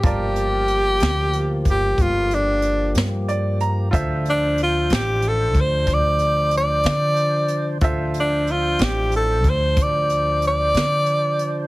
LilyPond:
<<
  \new Staff \with { instrumentName = "Upright piano" } { \time 12/8 \key d \minor \tempo 4. = 62 << { r1 r4 d''8 bes''8 | r1. | r1. | } \\ { <f' bes' d'' a''>1. | <f' a' c'' e''>1. | <f' a' c'' e''>1. | } >> }
  \new Staff \with { instrumentName = "Tenor saxophone" } { \time 12/8 \key d \minor g'2~ g'8 g'8 f'8 d'4 r4. | r8 d'8 f'8 g'8 a'8 c''8 d''4 d''2 | r8 d'8 f'8 g'8 a'8 c''8 d''4 d''2 | }
  \new Staff \with { instrumentName = "Tonewheel organ" } { \time 12/8 \key d \minor <f bes g'>1. | <f d' c''>1. | <f d' c''>1. | }
  \new Staff \with { instrumentName = "Upright bass" } { \clef bass \time 12/8 \key d \minor g,,4. d,4 g,,8 g,,4. g,4. | d,4. a,,4 d,8 d,4. d4. | d,4. a,,4 d,8 d,4. d4. | }
  \new DrumStaff \with { instrumentName = "Drums" } \drummode { \time 12/8 <hh bd>8 hh8 hh8 <hh sn>8 hh8 <hh bd>8 <hh bd>8 hh8 hh8 <hh sn>8 hh8 hh8 | <hh bd>8 hh8 hh8 <hh sn>8 hh8 <hh bd>8 <hh bd>8 hh8 hh8 <hh sn>8 hh8 hh8 | <hh bd>8 hh8 hh8 <hh sn>8 hh8 <hh bd>8 <hh bd>8 hh8 hh8 <hh sn>8 hh8 hh8 | }
>>